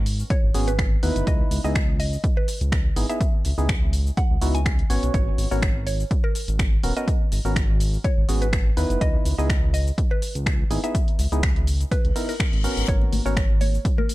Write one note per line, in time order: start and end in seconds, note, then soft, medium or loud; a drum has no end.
0.00 0.24 G#1 loud
0.06 open hi-hat loud
0.06 cabasa medium
0.20 cabasa soft
0.30 0.61 C#5 medium
0.30 kick loud
0.30 closed hi-hat medium
0.30 cabasa soft
0.43 0.50 G#1 medium
0.54 0.96 G#1 medium
0.54 0.73 B3 loud
0.54 0.73 C#4 loud
0.54 0.73 F#4 loud
0.54 0.73 G#4 loud
0.54 open hi-hat loud
0.54 cabasa medium
0.68 1.18 B4 medium
0.68 closed hi-hat medium
0.68 cabasa soft
0.79 finger snap loud
0.79 kick loud
0.79 closed hi-hat medium
0.79 cabasa soft
1.03 1.11 D#2 loud
1.03 1.61 B3 loud
1.03 1.61 D#4 medium
1.03 1.61 E4 medium
1.03 1.61 B4 loud
1.03 open hi-hat loud
1.03 cabasa medium
1.16 1.23 F#1 loud
1.16 closed hi-hat medium
1.16 cabasa soft
1.27 1.43 C#2 loud
1.27 1.58 D#5 medium
1.27 kick loud
1.27 closed hi-hat medium
1.27 cabasa soft
1.51 1.59 C#2 medium
1.51 open hi-hat loud
1.51 cabasa medium
1.64 2.17 C#2 loud
1.64 1.75 B3 medium
1.64 1.75 D#4 medium
1.64 1.75 E4 medium
1.64 1.75 G#4 loud
1.64 1.94 D#5 medium
1.64 cabasa soft
1.75 finger snap loud
1.75 kick loud
1.75 closed hi-hat medium
1.75 cabasa soft
2.00 2.30 D#5 medium
2.00 open hi-hat loud
2.00 cabasa medium
2.13 cabasa soft
2.24 kick loud
2.24 closed hi-hat medium
2.24 cabasa soft
2.37 2.67 B4 medium
2.48 open hi-hat loud
2.48 cabasa medium
2.61 2.90 C#2 medium
2.61 closed hi-hat medium
2.61 cabasa soft
2.72 finger snap loud
2.72 kick loud
2.72 closed hi-hat medium
2.72 cabasa soft
2.96 3.05 G#1 medium
2.96 3.06 B3 medium
2.96 3.06 D#4 medium
2.96 3.06 E4 medium
2.96 3.06 G#4 medium
2.96 open hi-hat loud
2.96 cabasa medium
3.09 3.20 B3 medium
3.09 3.20 D#4 medium
3.09 3.20 E4 medium
3.09 3.20 G#4 medium
3.09 3.39 E5 loud
3.09 closed hi-hat medium
3.09 cabasa soft
3.21 kick loud
3.21 closed hi-hat medium
3.21 cabasa soft
3.45 3.53 C#2 medium
3.45 open hi-hat loud
3.45 cabasa medium
3.58 4.11 C#2 loud
3.58 3.68 B3 medium
3.58 3.68 D#4 medium
3.58 3.68 E4 medium
3.58 3.68 G#4 loud
3.58 cabasa soft
3.69 finger snap loud
3.69 kick loud
3.69 closed hi-hat medium
3.69 cabasa soft
3.93 open hi-hat loud
3.93 cabasa medium
4.07 cabasa soft
4.17 4.48 F#5 loud
4.17 kick loud
4.17 closed hi-hat medium
4.17 cabasa soft
4.30 4.37 C#2 medium
4.42 4.83 C#2 medium
4.42 4.60 B3 loud
4.42 4.60 D#4 medium
4.42 4.60 E4 medium
4.42 4.60 F#4 loud
4.42 open hi-hat loud
4.42 cabasa medium
4.55 5.05 G#5 medium
4.55 closed hi-hat soft
4.55 cabasa soft
4.66 finger snap loud
4.66 kick loud
4.66 closed hi-hat medium
4.66 cabasa soft
4.79 closed hi-hat soft
4.90 4.98 G#1 loud
4.90 5.48 B3 loud
4.90 5.48 C#4 medium
4.90 5.48 F#4 loud
4.90 5.48 C#5 loud
4.90 open hi-hat loud
4.90 cabasa medium
5.03 5.10 B1 loud
5.03 closed hi-hat medium
5.03 cabasa soft
5.14 5.30 G#1 loud
5.14 5.45 C#5 loud
5.14 kick loud
5.14 closed hi-hat medium
5.14 cabasa soft
5.38 5.46 G#1 medium
5.38 open hi-hat loud
5.38 cabasa medium
5.51 6.04 G#1 medium
5.51 5.62 B3 medium
5.51 5.62 C#4 medium
5.51 5.62 F#4 medium
5.51 5.62 A#4 loud
5.51 5.81 C#5 medium
5.51 cabasa soft
5.62 finger snap loud
5.62 kick loud
5.62 closed hi-hat medium
5.62 cabasa soft
5.87 6.17 C#5 medium
5.87 open hi-hat loud
5.87 cabasa medium
6.00 cabasa soft
6.11 kick loud
6.11 closed hi-hat medium
6.11 cabasa soft
6.24 6.54 A#4 loud
6.35 open hi-hat loud
6.35 cabasa medium
6.48 6.77 G#1 medium
6.48 closed hi-hat soft
6.48 cabasa soft
6.59 finger snap loud
6.59 kick loud
6.59 closed hi-hat medium
6.59 cabasa soft
6.83 6.92 D#1 medium
6.83 6.93 B3 medium
6.83 6.93 C#4 medium
6.83 6.93 F#4 medium
6.83 6.93 A#4 medium
6.83 open hi-hat loud
6.83 cabasa medium
6.97 7.07 B3 medium
6.97 7.07 C#4 medium
6.97 7.07 F#4 medium
6.97 7.07 A#4 medium
6.97 7.26 D#5 loud
6.97 closed hi-hat medium
6.97 cabasa soft
7.08 kick loud
7.08 closed hi-hat medium
7.08 cabasa soft
7.32 7.40 G#1 medium
7.32 open hi-hat loud
7.32 cabasa medium
7.45 7.98 G#1 loud
7.45 7.55 B3 medium
7.45 7.55 C#4 medium
7.45 7.55 F#4 medium
7.45 7.55 A#4 loud
7.45 cabasa soft
7.56 finger snap loud
7.56 kick loud
7.56 closed hi-hat medium
7.56 cabasa soft
7.80 open hi-hat loud
7.80 cabasa medium
7.94 cabasa soft
8.04 8.35 C#5 medium
8.04 kick loud
8.04 closed hi-hat medium
8.04 cabasa soft
8.17 8.24 G#1 loud
8.29 8.70 G#1 medium
8.29 8.47 B3 loud
8.29 8.47 C#4 medium
8.29 8.47 F#4 medium
8.29 8.47 G#4 loud
8.29 open hi-hat loud
8.29 cabasa medium
8.42 8.92 B4 medium
8.42 closed hi-hat medium
8.42 cabasa soft
8.53 finger snap loud
8.53 kick loud
8.53 closed hi-hat medium
8.53 cabasa soft
8.77 8.85 D#2 loud
8.77 9.35 B3 loud
8.77 9.35 D#4 medium
8.77 9.35 E4 loud
8.77 9.35 B4 loud
8.77 open hi-hat loud
8.77 cabasa medium
8.90 8.97 F#1 loud
8.90 closed hi-hat medium
8.90 cabasa soft
9.01 9.17 C#2 loud
9.01 9.32 D#5 loud
9.01 kick loud
9.01 closed hi-hat medium
9.01 cabasa soft
9.25 9.34 C#2 loud
9.25 open hi-hat loud
9.25 cabasa medium
9.38 9.91 C#2 loud
9.38 9.49 B3 medium
9.38 9.49 D#4 medium
9.38 9.49 E4 medium
9.38 9.49 G#4 loud
9.38 9.68 D#5 loud
9.38 cabasa soft
9.50 finger snap loud
9.50 kick loud
9.50 closed hi-hat medium
9.50 cabasa soft
9.74 10.04 D#5 medium
9.74 open hi-hat loud
9.74 cabasa medium
9.87 cabasa soft
9.98 kick loud
9.98 closed hi-hat medium
9.98 cabasa soft
10.11 10.41 B4 medium
10.22 open hi-hat loud
10.22 cabasa medium
10.35 10.64 C#2 medium
10.35 closed hi-hat medium
10.35 cabasa soft
10.46 finger snap loud
10.46 kick loud
10.46 closed hi-hat medium
10.46 cabasa soft
10.70 10.79 G#1 medium
10.70 10.80 B3 medium
10.70 10.80 D#4 medium
10.70 10.80 E4 medium
10.70 10.81 G#4 medium
10.70 open hi-hat loud
10.70 cabasa medium
10.84 10.94 B3 medium
10.84 10.94 D#4 medium
10.84 10.94 E4 medium
10.84 10.94 G#4 medium
10.84 11.13 E5 loud
10.84 closed hi-hat medium
10.84 cabasa soft
10.95 kick loud
10.95 closed hi-hat medium
10.95 cabasa soft
11.08 closed hi-hat soft
11.19 11.27 C#2 medium
11.19 open hi-hat loud
11.19 cabasa medium
11.32 11.85 C#2 medium
11.32 11.42 B3 medium
11.32 11.42 D#4 medium
11.32 11.42 E4 medium
11.32 11.42 G#4 medium
11.32 closed hi-hat soft
11.32 cabasa soft
11.43 finger snap loud
11.43 kick loud
11.43 closed hi-hat medium
11.43 cabasa soft
11.56 closed hi-hat soft
11.67 open hi-hat loud
11.67 cabasa medium
11.80 closed hi-hat soft
11.80 cabasa soft
11.91 12.22 B4 medium
11.91 kick loud
11.91 closed hi-hat medium
11.91 reverse cymbal medium
11.91 cabasa soft
12.04 12.11 C#2 medium
12.04 closed hi-hat soft
12.16 12.34 B3 medium
12.16 12.34 D#4 medium
12.16 12.34 E4 medium
12.16 12.34 A#4 medium
12.16 open hi-hat loud
12.16 cabasa medium
12.29 12.79 A#4 medium
12.29 open hi-hat medium
12.29 cabasa soft
12.40 finger snap loud
12.40 kick loud
12.40 closed hi-hat medium
12.40 cabasa soft
12.53 12.67 G#1 medium
12.53 closed hi-hat soft
12.64 13.22 B3 medium
12.64 13.22 C#4 medium
12.64 13.22 F#4 medium
12.64 13.22 A#4 loud
12.64 open hi-hat loud
12.64 cabasa medium
12.77 12.84 G#1 loud
12.77 closed hi-hat medium
12.77 cabasa soft
12.88 13.04 G#1 loud
12.88 13.19 C#5 loud
12.88 kick loud
12.88 closed hi-hat medium
12.88 cabasa soft
13.01 muted conga medium
13.12 13.21 G#1 medium
13.12 open hi-hat loud
13.12 high conga medium
13.12 cabasa medium
13.25 13.78 G#1 loud
13.25 13.36 B3 loud
13.25 13.36 C#4 medium
13.25 13.36 F#4 medium
13.25 13.36 A#4 loud
13.25 13.55 C#5 medium
13.25 cabasa soft
13.37 finger snap loud
13.37 kick loud
13.37 closed hi-hat medium
13.37 muted conga medium
13.37 cabasa soft
13.61 13.92 C#5 medium
13.61 open hi-hat loud
13.61 high conga medium
13.61 cabasa medium
13.74 cabasa soft
13.85 kick loud
13.85 closed hi-hat medium
13.85 muted conga soft
13.85 cabasa soft
13.98 14.14 A#4 medium
13.98 high conga loud
14.09 open hi-hat loud
14.09 cabasa medium